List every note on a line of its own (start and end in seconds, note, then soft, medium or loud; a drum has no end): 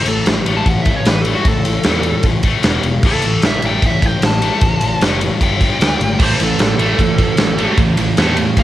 0.06 0.20 A1 medium
0.06 0.25 A2 medium
0.06 0.25 E3 medium
0.06 0.27 A4 loud
0.06 ride medium
0.26 0.41 A1 medium
0.26 0.45 A2 medium
0.26 0.45 E3 medium
0.26 snare loud
0.26 ride medium
0.46 0.60 A1 medium
0.46 0.65 A2 loud
0.46 0.66 E3 medium
0.46 0.66 A3 loud
0.46 ride medium
0.57 0.68 A5 medium
0.66 0.80 A1 medium
0.66 0.84 A2 medium
0.66 0.85 E3 medium
0.66 0.82 F#5 medium
0.66 kick medium
0.66 ride medium
0.82 0.94 E5 loud
0.82 kick medium
0.82 ride medium
0.86 1.00 A1 medium
0.86 1.04 A2 medium
0.86 1.05 E3 medium
0.96 1.07 C#5 medium
1.05 1.33 A1 medium
1.05 1.24 A2 medium
1.05 1.24 E3 medium
1.05 1.21 B4 medium
1.05 snare loud
1.05 ride loud
1.21 1.33 A4 loud
1.21 ride medium
1.26 1.44 A2 medium
1.26 1.45 E3 medium
1.26 1.45 A3 medium
1.35 1.47 F#4 medium
1.45 1.59 A1 medium
1.45 1.63 A2 medium
1.45 1.64 E3 medium
1.45 2.23 A4 loud
1.45 kick loud
1.45 ride loud
1.65 1.79 A1 medium
1.65 1.83 A2 medium
1.65 1.84 E3 medium
1.65 ride medium
1.84 2.13 E2 medium
1.84 2.04 A2 medium
1.84 2.04 E3 medium
1.84 2.05 A3 medium
1.84 snare loud
1.84 ride loud
2.03 2.23 A2 medium
2.03 2.23 E3 medium
2.03 ride medium
2.23 2.51 A1 medium
2.23 2.43 A2 medium
2.23 2.43 E3 medium
2.23 kick medium
2.23 ride loud
2.43 2.63 A2 medium
2.43 2.64 E3 medium
2.43 2.64 A3 loud
2.43 kick medium
2.43 ride medium
2.63 2.78 E1 medium
2.63 2.83 E2 medium
2.63 2.84 B2 loud
2.63 2.84 E3 loud
2.63 snare loud
2.63 ride loud
2.83 2.98 E1 medium
2.83 3.02 E2 medium
2.83 3.02 B2 medium
2.83 ride medium
3.03 3.17 A1 medium
3.03 3.23 A2 loud
3.03 3.24 E3 medium
3.03 3.24 A3 loud
3.03 3.44 A4 loud
3.03 kick loud
3.03 crash loud
3.22 3.37 A1 medium
3.22 3.42 A2 medium
3.22 3.43 E3 medium
3.22 ride medium
3.42 3.57 A1 medium
3.42 3.62 A2 medium
3.42 3.62 E3 medium
3.42 snare loud
3.42 ride medium
3.46 3.64 E5 medium
3.62 3.76 A1 loud
3.62 3.83 A2 loud
3.62 3.83 E3 loud
3.62 3.83 A3 loud
3.62 ride medium
3.67 3.84 G5 medium
3.82 3.96 A1 medium
3.82 4.02 A2 medium
3.82 4.02 E3 medium
3.82 4.06 E5 loud
3.82 kick medium
3.82 ride medium
4.02 4.16 A1 medium
4.02 4.21 A2 medium
4.02 4.21 E3 medium
4.02 4.23 G5 medium
4.02 kick medium
4.02 ride medium
4.22 4.50 A1 medium
4.22 4.40 A2 medium
4.22 4.40 E3 medium
4.22 5.01 A5 loud
4.22 snare loud
4.22 ride loud
4.42 4.61 A2 medium
4.42 4.61 E3 medium
4.42 4.62 A3 loud
4.42 ride medium
4.61 4.75 A1 medium
4.61 4.80 A2 medium
4.61 4.80 E3 medium
4.61 kick loud
4.61 ride loud
4.81 4.95 A1 medium
4.81 5.00 A2 medium
4.81 5.01 E3 medium
4.81 ride medium
5.01 5.29 F#1 medium
5.01 5.21 A2 medium
5.01 5.21 E3 loud
5.01 5.21 A3 loud
5.01 snare loud
5.01 ride loud
5.21 5.40 A2 medium
5.21 5.40 E3 medium
5.21 ride medium
5.41 5.68 G1 medium
5.41 5.60 G2 medium
5.41 5.60 D3 medium
5.41 5.60 G3 loud
5.41 6.19 G5 loud
5.41 kick medium
5.41 ride loud
5.61 5.80 G2 medium
5.61 5.79 D3 loud
5.61 5.80 G3 loud
5.61 kick medium
5.61 snare soft
5.61 ride medium
5.80 5.94 D2 medium
5.80 5.99 D3 medium
5.80 6.00 A3 loud
5.80 6.00 D4 loud
5.80 snare loud
5.80 ride loud
6.00 6.14 G#1 medium
6.00 6.19 D3 medium
6.00 6.19 A3 medium
6.00 ride medium
6.19 6.33 A1 medium
6.19 6.39 A2 medium
6.19 6.39 E3 loud
6.19 6.40 A3 loud
6.19 kick loud
6.19 crash loud
6.24 6.41 C5 loud
6.40 6.53 A1 medium
6.40 6.58 A2 medium
6.40 6.58 E3 medium
6.40 6.60 A4 medium
6.40 ride medium
6.59 6.73 A1 medium
6.59 6.77 A2 medium
6.59 6.77 E3 medium
6.59 7.76 A4 loud
6.59 snare loud
6.59 ride loud
6.78 6.93 A1 medium
6.78 6.97 A2 loud
6.78 6.98 E3 loud
6.78 6.98 A3 loud
6.78 ride medium
6.98 7.13 A1 medium
6.98 7.17 A2 medium
6.98 7.17 E3 medium
6.98 kick medium
6.98 ride medium
7.18 7.32 A1 medium
7.18 7.37 A2 medium
7.18 7.37 E3 medium
7.18 kick medium
7.18 ride medium
7.37 7.65 A1 medium
7.37 7.56 A2 medium
7.37 7.57 E3 medium
7.37 snare loud
7.37 ride loud
7.58 7.76 A2 medium
7.58 7.77 E3 loud
7.58 7.78 A3 loud
7.58 ride medium
7.78 7.92 A1 medium
7.78 7.96 A2 medium
7.78 7.96 E3 medium
7.78 kick loud
7.78 ride loud
7.97 8.11 A1 medium
7.97 8.16 A2 medium
7.97 8.16 E3 medium
7.97 ride medium
8.17 8.45 E2 medium
8.17 8.35 A2 medium
8.17 8.36 E3 medium
8.17 8.37 A3 loud
8.17 snare loud
8.17 ride medium
8.36 8.55 A2 medium
8.36 8.55 E3 medium
8.36 ride medium
8.57 8.63 A1 medium
8.57 8.63 A2 medium
8.57 8.63 E3 medium
8.57 8.63 G5 loud
8.57 kick medium
8.57 ride loud